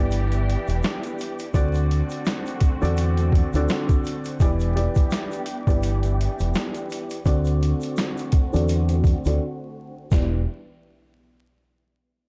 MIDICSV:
0, 0, Header, 1, 5, 480
1, 0, Start_track
1, 0, Key_signature, 1, "minor"
1, 0, Tempo, 714286
1, 1038, Time_signature, 4, 2, 24, 8
1, 8256, End_track
2, 0, Start_track
2, 0, Title_t, "Upright piano"
2, 0, Program_c, 0, 0
2, 0, Note_on_c, 0, 52, 85
2, 0, Note_on_c, 0, 59, 91
2, 0, Note_on_c, 0, 67, 94
2, 0, Note_on_c, 0, 74, 93
2, 962, Note_off_c, 0, 52, 0
2, 963, Note_off_c, 0, 59, 0
2, 963, Note_off_c, 0, 67, 0
2, 965, Note_off_c, 0, 74, 0
2, 1035, Note_on_c, 0, 50, 89
2, 1037, Note_on_c, 0, 60, 83
2, 1039, Note_on_c, 0, 66, 87
2, 1041, Note_on_c, 0, 74, 108
2, 1817, Note_off_c, 0, 50, 0
2, 1818, Note_off_c, 0, 60, 0
2, 1819, Note_off_c, 0, 66, 0
2, 1820, Note_off_c, 0, 74, 0
2, 1891, Note_on_c, 0, 50, 92
2, 1893, Note_on_c, 0, 60, 87
2, 1895, Note_on_c, 0, 66, 83
2, 1896, Note_on_c, 0, 74, 104
2, 2329, Note_off_c, 0, 50, 0
2, 2330, Note_off_c, 0, 60, 0
2, 2331, Note_off_c, 0, 66, 0
2, 2332, Note_off_c, 0, 74, 0
2, 2385, Note_on_c, 0, 50, 96
2, 2387, Note_on_c, 0, 60, 83
2, 2389, Note_on_c, 0, 66, 84
2, 2390, Note_on_c, 0, 74, 93
2, 2922, Note_off_c, 0, 50, 0
2, 2923, Note_off_c, 0, 60, 0
2, 2923, Note_off_c, 0, 66, 0
2, 2924, Note_off_c, 0, 74, 0
2, 2963, Note_on_c, 0, 52, 96
2, 2964, Note_on_c, 0, 59, 94
2, 2966, Note_on_c, 0, 67, 85
2, 2967, Note_on_c, 0, 74, 100
2, 3183, Note_off_c, 0, 52, 0
2, 3184, Note_off_c, 0, 59, 0
2, 3185, Note_off_c, 0, 67, 0
2, 3186, Note_off_c, 0, 74, 0
2, 3193, Note_on_c, 0, 52, 87
2, 3194, Note_on_c, 0, 59, 87
2, 3195, Note_on_c, 0, 67, 88
2, 3198, Note_on_c, 0, 74, 104
2, 3643, Note_off_c, 0, 52, 0
2, 3643, Note_off_c, 0, 59, 0
2, 3644, Note_off_c, 0, 67, 0
2, 3645, Note_off_c, 0, 74, 0
2, 3810, Note_on_c, 0, 52, 91
2, 3812, Note_on_c, 0, 59, 97
2, 3814, Note_on_c, 0, 67, 93
2, 3815, Note_on_c, 0, 74, 96
2, 4801, Note_off_c, 0, 52, 0
2, 4802, Note_off_c, 0, 59, 0
2, 4803, Note_off_c, 0, 67, 0
2, 4804, Note_off_c, 0, 74, 0
2, 4874, Note_on_c, 0, 50, 91
2, 4875, Note_on_c, 0, 60, 90
2, 4877, Note_on_c, 0, 66, 88
2, 4879, Note_on_c, 0, 74, 111
2, 5656, Note_off_c, 0, 50, 0
2, 5657, Note_off_c, 0, 60, 0
2, 5658, Note_off_c, 0, 66, 0
2, 5659, Note_off_c, 0, 74, 0
2, 5729, Note_on_c, 0, 50, 94
2, 5732, Note_on_c, 0, 60, 89
2, 5733, Note_on_c, 0, 66, 84
2, 5735, Note_on_c, 0, 74, 109
2, 6168, Note_off_c, 0, 50, 0
2, 6169, Note_off_c, 0, 60, 0
2, 6170, Note_off_c, 0, 66, 0
2, 6171, Note_off_c, 0, 74, 0
2, 6224, Note_on_c, 0, 50, 97
2, 6226, Note_on_c, 0, 60, 84
2, 6228, Note_on_c, 0, 66, 84
2, 6230, Note_on_c, 0, 74, 97
2, 6322, Note_off_c, 0, 50, 0
2, 6323, Note_off_c, 0, 60, 0
2, 6324, Note_off_c, 0, 66, 0
2, 6325, Note_off_c, 0, 74, 0
2, 6794, Note_on_c, 0, 52, 87
2, 6797, Note_on_c, 0, 59, 82
2, 6799, Note_on_c, 0, 67, 79
2, 6802, Note_on_c, 0, 74, 97
2, 6981, Note_off_c, 0, 52, 0
2, 6982, Note_off_c, 0, 59, 0
2, 6983, Note_off_c, 0, 67, 0
2, 6985, Note_off_c, 0, 74, 0
2, 8256, End_track
3, 0, Start_track
3, 0, Title_t, "String section"
3, 0, Program_c, 1, 48
3, 0, Note_on_c, 1, 52, 92
3, 0, Note_on_c, 1, 59, 79
3, 0, Note_on_c, 1, 62, 77
3, 0, Note_on_c, 1, 67, 100
3, 1017, Note_off_c, 1, 59, 0
3, 1017, Note_off_c, 1, 67, 0
3, 1018, Note_off_c, 1, 52, 0
3, 1018, Note_off_c, 1, 62, 0
3, 1039, Note_on_c, 1, 50, 87
3, 1039, Note_on_c, 1, 57, 79
3, 1039, Note_on_c, 1, 60, 83
3, 1039, Note_on_c, 1, 66, 89
3, 2939, Note_off_c, 1, 50, 0
3, 2939, Note_off_c, 1, 57, 0
3, 2939, Note_off_c, 1, 60, 0
3, 2939, Note_off_c, 1, 66, 0
3, 2956, Note_on_c, 1, 62, 77
3, 2957, Note_on_c, 1, 52, 82
3, 2957, Note_on_c, 1, 59, 78
3, 2957, Note_on_c, 1, 67, 97
3, 4858, Note_off_c, 1, 52, 0
3, 4858, Note_off_c, 1, 59, 0
3, 4858, Note_off_c, 1, 62, 0
3, 4858, Note_off_c, 1, 67, 0
3, 4874, Note_on_c, 1, 50, 85
3, 4874, Note_on_c, 1, 60, 79
3, 4875, Note_on_c, 1, 57, 79
3, 4875, Note_on_c, 1, 66, 99
3, 6777, Note_off_c, 1, 50, 0
3, 6777, Note_off_c, 1, 57, 0
3, 6777, Note_off_c, 1, 60, 0
3, 6777, Note_off_c, 1, 66, 0
3, 6799, Note_on_c, 1, 67, 81
3, 6800, Note_on_c, 1, 52, 76
3, 6800, Note_on_c, 1, 59, 69
3, 6800, Note_on_c, 1, 62, 70
3, 7022, Note_off_c, 1, 52, 0
3, 7022, Note_off_c, 1, 59, 0
3, 7022, Note_off_c, 1, 62, 0
3, 7022, Note_off_c, 1, 67, 0
3, 8256, End_track
4, 0, Start_track
4, 0, Title_t, "Fingered electric bass"
4, 0, Program_c, 2, 33
4, 0, Note_on_c, 2, 31, 98
4, 371, Note_off_c, 2, 31, 0
4, 457, Note_on_c, 2, 28, 93
4, 541, Note_off_c, 2, 28, 0
4, 1039, Note_on_c, 2, 38, 115
4, 1350, Note_off_c, 2, 38, 0
4, 1899, Note_on_c, 2, 40, 92
4, 2293, Note_off_c, 2, 40, 0
4, 2378, Note_on_c, 2, 38, 95
4, 2461, Note_off_c, 2, 38, 0
4, 2959, Note_on_c, 2, 28, 112
4, 3270, Note_off_c, 2, 28, 0
4, 3814, Note_on_c, 2, 31, 101
4, 4210, Note_off_c, 2, 31, 0
4, 4299, Note_on_c, 2, 28, 94
4, 4382, Note_off_c, 2, 28, 0
4, 4879, Note_on_c, 2, 38, 117
4, 5190, Note_off_c, 2, 38, 0
4, 5740, Note_on_c, 2, 40, 91
4, 6134, Note_off_c, 2, 40, 0
4, 6220, Note_on_c, 2, 38, 96
4, 6302, Note_off_c, 2, 38, 0
4, 6800, Note_on_c, 2, 28, 105
4, 7022, Note_off_c, 2, 28, 0
4, 8256, End_track
5, 0, Start_track
5, 0, Title_t, "Drums"
5, 76, Note_on_c, 9, 82, 71
5, 81, Note_on_c, 9, 42, 90
5, 143, Note_off_c, 9, 82, 0
5, 148, Note_off_c, 9, 42, 0
5, 214, Note_on_c, 9, 42, 35
5, 214, Note_on_c, 9, 82, 53
5, 281, Note_off_c, 9, 42, 0
5, 282, Note_off_c, 9, 82, 0
5, 333, Note_on_c, 9, 42, 72
5, 400, Note_off_c, 9, 42, 0
5, 454, Note_on_c, 9, 82, 55
5, 467, Note_on_c, 9, 42, 54
5, 522, Note_off_c, 9, 82, 0
5, 535, Note_off_c, 9, 42, 0
5, 557, Note_on_c, 9, 82, 63
5, 566, Note_on_c, 9, 42, 80
5, 567, Note_on_c, 9, 38, 123
5, 574, Note_on_c, 9, 40, 95
5, 624, Note_off_c, 9, 82, 0
5, 633, Note_off_c, 9, 42, 0
5, 634, Note_off_c, 9, 38, 0
5, 642, Note_off_c, 9, 40, 0
5, 694, Note_on_c, 9, 42, 36
5, 696, Note_on_c, 9, 82, 48
5, 762, Note_off_c, 9, 42, 0
5, 763, Note_off_c, 9, 82, 0
5, 797, Note_on_c, 9, 82, 45
5, 813, Note_on_c, 9, 42, 89
5, 864, Note_off_c, 9, 82, 0
5, 880, Note_off_c, 9, 42, 0
5, 934, Note_on_c, 9, 82, 53
5, 939, Note_on_c, 9, 42, 60
5, 1001, Note_off_c, 9, 82, 0
5, 1006, Note_off_c, 9, 42, 0
5, 1037, Note_on_c, 9, 36, 111
5, 1037, Note_on_c, 9, 82, 70
5, 1043, Note_on_c, 9, 42, 96
5, 1104, Note_off_c, 9, 36, 0
5, 1105, Note_off_c, 9, 82, 0
5, 1110, Note_off_c, 9, 42, 0
5, 1168, Note_on_c, 9, 82, 60
5, 1180, Note_on_c, 9, 42, 36
5, 1235, Note_off_c, 9, 82, 0
5, 1247, Note_off_c, 9, 42, 0
5, 1285, Note_on_c, 9, 42, 75
5, 1352, Note_off_c, 9, 42, 0
5, 1408, Note_on_c, 9, 82, 57
5, 1422, Note_on_c, 9, 42, 65
5, 1475, Note_off_c, 9, 82, 0
5, 1490, Note_off_c, 9, 42, 0
5, 1514, Note_on_c, 9, 82, 76
5, 1523, Note_on_c, 9, 38, 111
5, 1525, Note_on_c, 9, 42, 92
5, 1530, Note_on_c, 9, 40, 95
5, 1581, Note_off_c, 9, 82, 0
5, 1590, Note_off_c, 9, 38, 0
5, 1592, Note_off_c, 9, 42, 0
5, 1598, Note_off_c, 9, 40, 0
5, 1653, Note_on_c, 9, 82, 49
5, 1665, Note_on_c, 9, 42, 37
5, 1720, Note_off_c, 9, 82, 0
5, 1732, Note_off_c, 9, 42, 0
5, 1750, Note_on_c, 9, 42, 87
5, 1755, Note_on_c, 9, 36, 99
5, 1757, Note_on_c, 9, 82, 50
5, 1817, Note_off_c, 9, 42, 0
5, 1822, Note_off_c, 9, 36, 0
5, 1824, Note_off_c, 9, 82, 0
5, 1896, Note_on_c, 9, 82, 51
5, 1913, Note_on_c, 9, 42, 56
5, 1963, Note_off_c, 9, 82, 0
5, 1980, Note_off_c, 9, 42, 0
5, 1996, Note_on_c, 9, 82, 73
5, 2001, Note_on_c, 9, 42, 91
5, 2064, Note_off_c, 9, 82, 0
5, 2069, Note_off_c, 9, 42, 0
5, 2133, Note_on_c, 9, 42, 37
5, 2136, Note_on_c, 9, 82, 53
5, 2200, Note_off_c, 9, 42, 0
5, 2203, Note_off_c, 9, 82, 0
5, 2234, Note_on_c, 9, 36, 88
5, 2253, Note_on_c, 9, 42, 71
5, 2301, Note_off_c, 9, 36, 0
5, 2320, Note_off_c, 9, 42, 0
5, 2375, Note_on_c, 9, 82, 57
5, 2387, Note_on_c, 9, 42, 56
5, 2442, Note_off_c, 9, 82, 0
5, 2454, Note_off_c, 9, 42, 0
5, 2478, Note_on_c, 9, 82, 62
5, 2486, Note_on_c, 9, 42, 79
5, 2487, Note_on_c, 9, 38, 117
5, 2494, Note_on_c, 9, 40, 96
5, 2545, Note_off_c, 9, 82, 0
5, 2553, Note_off_c, 9, 42, 0
5, 2554, Note_off_c, 9, 38, 0
5, 2561, Note_off_c, 9, 40, 0
5, 2614, Note_on_c, 9, 42, 36
5, 2616, Note_on_c, 9, 36, 99
5, 2617, Note_on_c, 9, 82, 48
5, 2681, Note_off_c, 9, 42, 0
5, 2683, Note_off_c, 9, 36, 0
5, 2684, Note_off_c, 9, 82, 0
5, 2717, Note_on_c, 9, 82, 45
5, 2733, Note_on_c, 9, 42, 86
5, 2784, Note_off_c, 9, 82, 0
5, 2800, Note_off_c, 9, 42, 0
5, 2852, Note_on_c, 9, 82, 53
5, 2860, Note_on_c, 9, 42, 58
5, 2919, Note_off_c, 9, 82, 0
5, 2927, Note_off_c, 9, 42, 0
5, 2957, Note_on_c, 9, 36, 110
5, 2957, Note_on_c, 9, 82, 73
5, 2964, Note_on_c, 9, 42, 99
5, 3024, Note_off_c, 9, 36, 0
5, 3024, Note_off_c, 9, 82, 0
5, 3031, Note_off_c, 9, 42, 0
5, 3088, Note_on_c, 9, 82, 58
5, 3100, Note_on_c, 9, 42, 37
5, 3155, Note_off_c, 9, 82, 0
5, 3168, Note_off_c, 9, 42, 0
5, 3205, Note_on_c, 9, 42, 78
5, 3272, Note_off_c, 9, 42, 0
5, 3327, Note_on_c, 9, 82, 59
5, 3335, Note_on_c, 9, 36, 100
5, 3342, Note_on_c, 9, 42, 65
5, 3394, Note_off_c, 9, 82, 0
5, 3402, Note_off_c, 9, 36, 0
5, 3410, Note_off_c, 9, 42, 0
5, 3433, Note_on_c, 9, 82, 79
5, 3443, Note_on_c, 9, 38, 115
5, 3445, Note_on_c, 9, 42, 93
5, 3451, Note_on_c, 9, 40, 92
5, 3500, Note_off_c, 9, 82, 0
5, 3510, Note_off_c, 9, 38, 0
5, 3512, Note_off_c, 9, 42, 0
5, 3518, Note_off_c, 9, 40, 0
5, 3572, Note_on_c, 9, 82, 49
5, 3584, Note_on_c, 9, 42, 36
5, 3639, Note_off_c, 9, 82, 0
5, 3651, Note_off_c, 9, 42, 0
5, 3669, Note_on_c, 9, 42, 85
5, 3676, Note_on_c, 9, 82, 52
5, 3736, Note_off_c, 9, 42, 0
5, 3744, Note_off_c, 9, 82, 0
5, 3811, Note_on_c, 9, 36, 93
5, 3815, Note_on_c, 9, 82, 51
5, 3832, Note_on_c, 9, 42, 57
5, 3879, Note_off_c, 9, 36, 0
5, 3882, Note_off_c, 9, 82, 0
5, 3899, Note_off_c, 9, 42, 0
5, 3916, Note_on_c, 9, 82, 73
5, 3920, Note_on_c, 9, 42, 91
5, 3983, Note_off_c, 9, 82, 0
5, 3987, Note_off_c, 9, 42, 0
5, 4052, Note_on_c, 9, 42, 35
5, 4054, Note_on_c, 9, 82, 56
5, 4119, Note_off_c, 9, 42, 0
5, 4121, Note_off_c, 9, 82, 0
5, 4171, Note_on_c, 9, 42, 74
5, 4238, Note_off_c, 9, 42, 0
5, 4294, Note_on_c, 9, 82, 57
5, 4305, Note_on_c, 9, 42, 56
5, 4361, Note_off_c, 9, 82, 0
5, 4372, Note_off_c, 9, 42, 0
5, 4396, Note_on_c, 9, 82, 62
5, 4404, Note_on_c, 9, 42, 78
5, 4405, Note_on_c, 9, 38, 123
5, 4413, Note_on_c, 9, 40, 96
5, 4464, Note_off_c, 9, 82, 0
5, 4471, Note_off_c, 9, 42, 0
5, 4472, Note_off_c, 9, 38, 0
5, 4480, Note_off_c, 9, 40, 0
5, 4533, Note_on_c, 9, 42, 37
5, 4536, Note_on_c, 9, 82, 48
5, 4600, Note_off_c, 9, 42, 0
5, 4603, Note_off_c, 9, 82, 0
5, 4637, Note_on_c, 9, 82, 45
5, 4652, Note_on_c, 9, 42, 88
5, 4704, Note_off_c, 9, 82, 0
5, 4719, Note_off_c, 9, 42, 0
5, 4772, Note_on_c, 9, 82, 54
5, 4778, Note_on_c, 9, 42, 61
5, 4839, Note_off_c, 9, 82, 0
5, 4845, Note_off_c, 9, 42, 0
5, 4875, Note_on_c, 9, 82, 70
5, 4877, Note_on_c, 9, 36, 108
5, 4883, Note_on_c, 9, 42, 100
5, 4942, Note_off_c, 9, 82, 0
5, 4944, Note_off_c, 9, 36, 0
5, 4950, Note_off_c, 9, 42, 0
5, 5005, Note_on_c, 9, 82, 60
5, 5020, Note_on_c, 9, 42, 38
5, 5073, Note_off_c, 9, 82, 0
5, 5087, Note_off_c, 9, 42, 0
5, 5125, Note_on_c, 9, 42, 79
5, 5192, Note_off_c, 9, 42, 0
5, 5247, Note_on_c, 9, 82, 57
5, 5263, Note_on_c, 9, 42, 62
5, 5314, Note_off_c, 9, 82, 0
5, 5331, Note_off_c, 9, 42, 0
5, 5353, Note_on_c, 9, 82, 79
5, 5363, Note_on_c, 9, 38, 115
5, 5365, Note_on_c, 9, 42, 93
5, 5370, Note_on_c, 9, 40, 94
5, 5420, Note_off_c, 9, 82, 0
5, 5430, Note_off_c, 9, 38, 0
5, 5432, Note_off_c, 9, 42, 0
5, 5437, Note_off_c, 9, 40, 0
5, 5493, Note_on_c, 9, 82, 49
5, 5505, Note_on_c, 9, 42, 37
5, 5560, Note_off_c, 9, 82, 0
5, 5572, Note_off_c, 9, 42, 0
5, 5590, Note_on_c, 9, 42, 86
5, 5595, Note_on_c, 9, 36, 103
5, 5658, Note_off_c, 9, 42, 0
5, 5663, Note_off_c, 9, 36, 0
5, 5735, Note_on_c, 9, 82, 52
5, 5753, Note_on_c, 9, 42, 57
5, 5803, Note_off_c, 9, 82, 0
5, 5820, Note_off_c, 9, 42, 0
5, 5837, Note_on_c, 9, 82, 74
5, 5842, Note_on_c, 9, 42, 88
5, 5904, Note_off_c, 9, 82, 0
5, 5909, Note_off_c, 9, 42, 0
5, 5973, Note_on_c, 9, 42, 35
5, 5975, Note_on_c, 9, 82, 57
5, 6040, Note_off_c, 9, 42, 0
5, 6042, Note_off_c, 9, 82, 0
5, 6074, Note_on_c, 9, 36, 89
5, 6075, Note_on_c, 9, 82, 50
5, 6093, Note_on_c, 9, 42, 71
5, 6141, Note_off_c, 9, 36, 0
5, 6142, Note_off_c, 9, 82, 0
5, 6160, Note_off_c, 9, 42, 0
5, 6214, Note_on_c, 9, 82, 56
5, 6227, Note_on_c, 9, 42, 56
5, 6281, Note_off_c, 9, 82, 0
5, 6294, Note_off_c, 9, 42, 0
5, 6798, Note_on_c, 9, 36, 109
5, 6798, Note_on_c, 9, 82, 83
5, 6804, Note_on_c, 9, 38, 88
5, 6865, Note_off_c, 9, 36, 0
5, 6865, Note_off_c, 9, 82, 0
5, 6871, Note_off_c, 9, 38, 0
5, 8256, End_track
0, 0, End_of_file